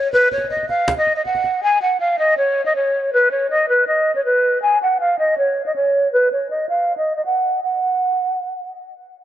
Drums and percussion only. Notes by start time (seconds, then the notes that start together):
0.13 cajon slap
0.32 cajon slap
0.38 cajon slap
0.44 cajon slap
0.50 cajon slap
0.57 cajon slap
0.63 cajon slap
0.69 cajon slap
0.88 cajon slap
0.97 cajon slap
1.07 cajon slap
1.25 cajon slap
1.35 cajon slap
1.44 cajon slap